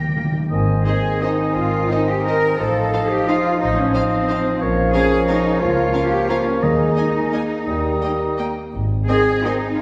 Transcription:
Already playing: clarinet A#3, violin section G4 G5, flute A#6
0.01 timpani D#3
0.09 timpani D#3
0.16 timpani D#3, viola section A#3
0.25 timpani D#3
0.32 timpani D#3
0.39 timpani D#3
0.50 double bass section G#1, timpani G#2, french horn section D#3 C4, bassoon D#3, clarinet C5, oboe D#5, flute G#5
0.85 bassoon D#3, viola section D#4, cello section G#4, violin section C5 D#5, clarinet C5, oboe D#5, flute G#5
1.21 bassoon D#3, cello section D#4, viola section D#4, clarinet C5, violin section C5 D#5, oboe D#5, flute G#5
1.56 double bass section G#1, cello section F4
1.91 bassoon D#3, cello section D#4, viola section D#4, violin section C5 D#5, clarinet C5, oboe D#5, flute G#5
2.09 cello section G4
2.26 viola section D#4, cello section A#4, violin section C5 D#5
2.59 double bass section A1, french horn section F3 D#4, bassoon F3, cello section A4, clarinet C5, oboe D#5, flute F5
2.93 viola section D#4, violin section C5 F5
3.10 cello section G4
3.27 bassoon F3, viola section D#4, cello section F4, violin section C5 F5, clarinet C5, oboe D#5, flute F5
3.60 double bass section A1, bassoon F3, cello section D#4, clarinet C5, oboe D#5, flute F5
3.78 cello section C#4
3.94 bassoon F3, cello section C4, viola section D#4, violin section C5 F5, clarinet C5, oboe D#5, flute F5
4.28 viola section D#4, violin section C5 F5
4.61 double bass section A#1, french horn section F3 C#4, bassoon F3, clarinet A#4, oboe C#5, flute F5
4.93 bassoon F3, viola section C#4, cello section G#4, violin section A#4 F5, clarinet A#4, oboe C#5, flute F5
5.28 viola section C#4, cello section D#4, violin section A#4 F5
5.60 double bass section C#2, bassoon F3, french horn section A#3 F4, cello section F4, clarinet A#4, oboe C#5, flute F5
5.93 viola section C#4, violin section A#4 F5
6.10 cello section G4
6.28 bassoon F3, viola section C#4, cello section F4, violin section A#4 F5, clarinet A#4, oboe C#5, flute F5
6.45 cello section C#4
6.62 double bass section D#2, timpani D#3, bassoon G#3, cello section D#4, french horn section G#4, clarinet A#4, oboe D#5, flute A#5
6.96 viola section A#3, violin section D#5 G#5
7.33 viola section A#3, violin section D#5 G#5
7.66 double bass section D#2, bassoon G3, french horn section A#3 G4, clarinet A#4, oboe D#5, flute A#5
8.02 viola section A#3, violin section D#5 G5
8.38 viola section A#3, violin section D#5 G5
8.74 double bass section G#1, french horn section C4 D#4
9.08 bassoon D#3, viola section C4, cello section G#4, clarinet C5, oboe D#5, violin section D#5 G#5, flute G#5
9.44 bassoon D#3, viola section C4, cello section D#4, clarinet C5, oboe D#5, violin section D#5 G#5, flute G#5
9.78 cello section F4

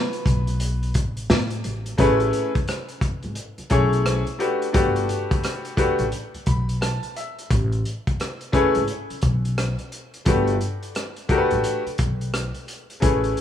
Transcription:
Already playing: upright piano B4
0.13 closed hi-hat
0.26 upright bass B1, kick, closed hi-hat
0.47 closed hi-hat
0.60 closed hi-hat
0.83 closed hi-hat
0.94 upright bass A1, kick, closed hi-hat
1.17 closed hi-hat
1.30 upright bass A2, snare
1.50 closed hi-hat
1.64 upright bass A1, closed hi-hat
1.86 closed hi-hat
1.98 upright bass A1, upright piano A3 C#4 E4 G#4 B4, kick, closed hi-hat
2.20 closed hi-hat
2.33 closed hi-hat
2.55 kick, closed hi-hat
2.68 cross-stick, closed hi-hat
2.89 closed hi-hat
3.01 kick, closed hi-hat
3.23 upright bass G#1, closed hi-hat
3.35 closed hi-hat
3.58 muted upright bass stroke, closed hi-hat
3.70 upright bass B1, upright piano A3 C#4 E4 G#4 C#5, kick, closed hi-hat
3.93 closed hi-hat
4.06 cross-stick, closed hi-hat
4.27 closed hi-hat
4.39 upright piano A3 D4 F#4 G4 B4, closed hi-hat
4.62 closed hi-hat
4.72 upright bass G1, upright piano A3 D4 F#4 G4 B4, kick, closed hi-hat
4.96 closed hi-hat
5.09 closed hi-hat
5.31 kick, closed hi-hat
5.44 cross-stick, closed hi-hat
5.65 closed hi-hat
5.77 upright piano A3 D4 F#4 G4 B4, kick, closed hi-hat
5.99 upright bass A1, closed hi-hat
6.12 closed hi-hat
6.34 muted upright bass stroke, closed hi-hat
6.46 upright bass B1, upright piano B5, kick, closed hi-hat
6.69 closed hi-hat
6.81 upright piano A5, cross-stick, closed hi-hat
7.03 closed hi-hat
7.17 upright piano E5, closed hi-hat
7.39 closed hi-hat
7.50 upright bass A1, kick, closed hi-hat
7.72 closed hi-hat
7.85 closed hi-hat
8.07 kick, closed hi-hat
8.20 cross-stick, closed hi-hat
8.41 closed hi-hat
8.52 upright piano A3 C#4 E4 G#4 B4, kick, closed hi-hat
8.75 upright bass G#1, closed hi-hat
8.88 closed hi-hat
9.10 muted upright bass stroke, closed hi-hat
9.22 upright bass B1, kick, closed hi-hat
9.45 closed hi-hat
9.58 cross-stick, closed hi-hat
9.79 closed hi-hat
9.92 closed hi-hat
10.14 closed hi-hat
10.25 upright bass G1, upright piano A3 D4 F#4 G4 B4, kick, closed hi-hat
10.47 closed hi-hat
10.61 closed hi-hat
10.83 closed hi-hat
10.95 cross-stick, closed hi-hat
11.16 closed hi-hat
11.29 upright piano A3 D4 F#4 G4 A#4, kick, closed hi-hat
11.38 upright piano B4
11.51 upright bass A1, closed hi-hat
11.64 closed hi-hat
11.86 muted upright bass stroke, closed hi-hat
11.98 upright bass B1, kick, closed hi-hat
12.21 closed hi-hat
12.34 cross-stick, closed hi-hat
12.54 closed hi-hat
12.68 closed hi-hat
12.90 closed hi-hat
13.00 upright bass A1, upright piano A3 C#4 E4 G#4 B4, kick, closed hi-hat
13.24 closed hi-hat
13.37 closed hi-hat

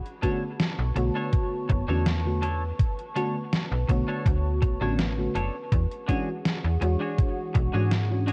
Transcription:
Already playing: ambient pad B4 A5 C#6
0.06 closed hi-hat
0.22 fm electric piano D3 A3 B3 C#4 F#4, clean electric guitar D4 A4 C#5, kick, closed hi-hat
0.60 snare, closed hi-hat
0.79 fm bass B1
0.95 fm bass B1, fm electric piano D3 A3 B3 F#4 C#5, muted clean electric guitar stroke, closed hi-hat
1.15 clean electric guitar D4 A4 C#5
1.33 kick, closed hi-hat
1.69 fm bass F#1, muted clean electric guitar stroke, kick, closed hi-hat
1.88 fm bass E2, fm electric piano D3 A3 B3 C#4 F#4, clean electric guitar D4 A4 C#5
2.06 snare, closed hi-hat
2.25 fm electric piano D3 A3 B3 C#4 F#4
2.42 clean electric guitar D4 A4 C#5, closed hi-hat
2.79 kick, closed hi-hat
2.99 closed hi-hat
3.15 fm electric piano D3 A3 B3 C#4 F#4, clean electric guitar D4 A4 C#5, closed hi-hat
3.53 snare, closed hi-hat
3.72 fm bass B1
3.88 fm bass B1, fm electric piano D3 A3 B3 F#4 C#5, muted clean electric guitar stroke, kick, closed hi-hat
4.08 clean electric guitar D4 A4 C#5
4.26 fm bass D2, kick, closed hi-hat
4.62 fm bass B1, muted clean electric guitar stroke, kick, closed hi-hat
4.81 fm bass A1, fm electric piano D3 A3 B3 C#4 F#4, clean electric guitar D4 A4 C#5
4.99 snare, closed hi-hat
5.17 fm electric piano D3 A3 B3 C#4 F#4
5.35 fm bass F#1, clean electric guitar D4 A4 C#5, closed hi-hat
5.72 fm bass E2, ambient pad G#4 F#5 C#6, kick, closed hi-hat
5.91 closed hi-hat
6.08 fm electric piano E3 G#3 C#4 D4 F#4, clean electric guitar D4 F#4 G#4 C#5, kick, closed hi-hat
6.45 snare, closed hi-hat
6.64 fm bass E2
6.80 fm bass E2, fm electric piano E3 G#3 D4 F#4 C#5, muted clean electric guitar stroke, closed hi-hat
7.00 clean electric guitar D4 F#4 G#4 C#5
7.18 kick, closed hi-hat
7.54 fm bass B1, muted clean electric guitar stroke, kick, closed hi-hat
7.73 fm bass G#2, fm electric piano E3 G#3 C#4 D4 F#4, clean electric guitar D4 F#4 G#4 C#5
7.91 snare, closed hi-hat
8.10 fm electric piano E3 G#3 C#4 D4 F#4
8.27 clean electric guitar D4 F#4 G#4 C#5, closed hi-hat

